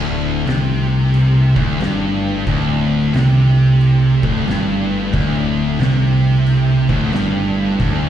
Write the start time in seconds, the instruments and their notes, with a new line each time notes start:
Already playing: fingered electric bass D1, distorted electric guitar D2, tonewheel organ D3 A3 E4
0.46 fingered electric bass C2, distorted electric guitar C3, snare, crash
1.14 crash
1.56 fingered electric bass D1, distorted electric guitar D2, kick
1.80 fingered electric bass G1, distorted electric guitar G2, snare, crash
2.47 fingered electric bass D1, distorted electric guitar D2, kick, crash
3.14 fingered electric bass C2, distorted electric guitar C3, snare, crash
3.81 crash
4.22 fingered electric bass D1, distorted electric guitar D2, kick
4.47 fingered electric bass G1, distorted electric guitar G2, snare, crash
5.13 fingered electric bass D1, distorted electric guitar D2, kick, crash
5.79 fingered electric bass C2, distorted electric guitar C3, snare, crash
6.46 crash
6.89 fingered electric bass D1, distorted electric guitar D2, kick
7.13 fingered electric bass G1, distorted electric guitar G2, snare, crash
7.80 fingered electric bass D1, distorted electric guitar D2, kick, crash